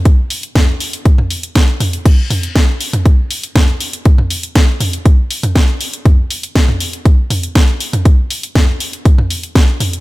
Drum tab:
CC |----------------|x---------------|----------------|----------------|
HH |x-oxx-oxx-oxx-ox|x-oxx-oxx-oxx-ox|x-oxx-oxx-oxx-ox|x-oxx-oxx-oxx-ox|
SD |----o-------o---|----o-------o---|----o-------o---|----o-------o---|
T2 |----o----o----o-|--o----o----o---|-o----o----o----|o----o----o----o|
BD |o---o---o---o---|o---o---o---o---|o---o---o---o---|o---o---o---o---|

CC |----------------|
HH |x-oxx-oxx-oxx-ox|
SD |----o-------o---|
T2 |----o----o----o-|
BD |o---o---o---o---|